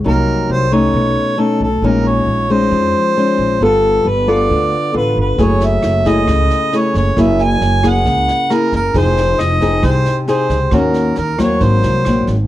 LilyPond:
<<
  \new Staff \with { instrumentName = "Harmonica" } { \time 4/4 \key ges \lydian \tempo 4 = 135 bes'4 c''8 des''4. a'8 a'8 | bes'8 des''4 c''2~ c''8 | a'4 b'8 d''4. b'8 b'8 | des''8 fes''4 ees''4. des''8 des''8 |
fes''8 aes''4 ges''4. bes'8 bes'8 | c''4 ees''4 c''4 c''4 | bes'4 bes'8 des''8 c''4. r8 | }
  \new Staff \with { instrumentName = "Nylon-string guitar" } { \time 4/4 \key ges \lydian << { <ges bes ees'>4. <a des' ees'>4. <a des' ees'>8 r8 | <aes des' ees'>4. <aes des' ees'>4. <aes des' ees'>4 | <b f' a'>4 r8 <b f' a'>4. <b f' a'>4 | <a fes' aes'>4. <a fes' aes'>4. <a fes' aes'>4 |
<bes fes' aes'>4. <bes fes' aes'>4. <bes fes' aes'>8 r8 | <c' ees' aes'>4. <c' ees' aes'>4. <c' ees' aes'>8 r8 | <bes des' ges'>4 r8 <ges bes c'>4. <ges bes c'>8 r8 | } \\ { c2 ces2 | bes,2 f2 | g2 d2 | ges2 des2 |
ges2 des2 | f2 c2 | ees2 aes,2 | } >> }
  \new Staff \with { instrumentName = "Upright bass" } { \clef bass \time 4/4 \key ges \lydian c,4 c,4 ces,8 r4 ces,8 | bes,,4 bes,,4 f,8 r4 bes,,8 | g,,4 g,,4 d,8 r8 a,,8 g,,8 | ges,,4 ges,,4 des,8 r4 ges,,8 |
ges,,4 ges,,4 des,8 r4 ges,,8 | f,,4 f,,4 c,8 r4 des,8 | ees,4 ees,4 aes,,8 c,8 bes,,8 aes,,8 | }
  \new DrumStaff \with { instrumentName = "Drums" } \drummode { \time 4/4 r4 r4 r4 r4 | r4 r4 r4 r4 | r4 r4 r4 r4 | <bd sn>8 sn8 <ss sn>8 <bd sn>8 <bd ss sn>8 sn8 sn8 <bd sn>8 |
<bd ss sn>8 sn8 sn8 <bd ss sn>8 <bd sn>8 sn8 <ss sn>8 <bd sn>8 | <bd sn>8 sn8 <ss sn>8 <bd sn>8 <bd ss sn>8 sn8 sn8 <bd sn>8 | <bd ss sn>8 sn8 sn8 <bd ss sn>8 <bd sn>8 sn8 <ss sn>8 <bd sn>8 | }
>>